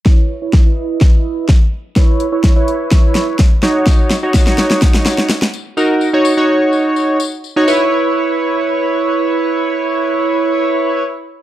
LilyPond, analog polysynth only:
\new Staff \with { instrumentName = "Analog polysynth" } { \time 4/4 \key cis \minor \tempo 4 = 126 <e' b' cis''>8. <e' b' cis''>8 <e' b' dis''>4.~ <e' b' dis''>16 r4 | <e' b' cis''>8. <e' b' cis''>8 <e' b' cis''>4.~ <e' b' cis''>16 r8 <dis' fis' cis''>8~ | <dis' fis' cis''>8 r16 <dis' fis' cis''>8 <dis' fis' cis''>4.~ <dis' fis' cis''>16 r4 | <dis' fis' ais'>8. <dis' fis' cis''>8 <dis' fis' cis''>4.~ <dis' fis' cis''>16 r8. <dis' fis' cis''>16 |
<e' b' cis''>1~ | <e' b' cis''>1 | }